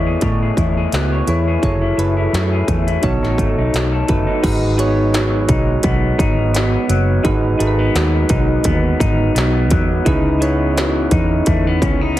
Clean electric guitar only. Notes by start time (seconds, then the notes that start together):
Already playing: A3 B3 E4 C#5
0.07 G#4
0.22 A3 C#5
0.42 G#4
0.58 E4
0.77 G#4
0.93 B3
1.12 C#5
1.28 E4
1.48 G#4
1.63 F#3 G#4
1.82 E4
1.98 A3
2.17 E4
2.33 A3
2.52 G#4
2.68 A3
2.87 E4
3.03 B2 A4
3.23 D#4
3.39 A3
3.58 D#4
3.74 F#3
3.92 A4
4.08 A3
4.27 D#4
4.43 G#2 D#4
4.78 B3
5.13 F#3
5.48 D#4
5.83 B3
6.18 D#4
6.54 B3
6.89 F#3
7.24 G#2 D#4
7.59 A3
7.79 B3
7.95 F#3
8.29 D#4
8.64 B3
9.00 D#4
9.35 B3
9.71 F#3
10.06 C#3 D#4
10.41 B3
10.77 E3
11.12 D#4
11.47 A3
11.67 B3
11.82 C#4
12.01 D#4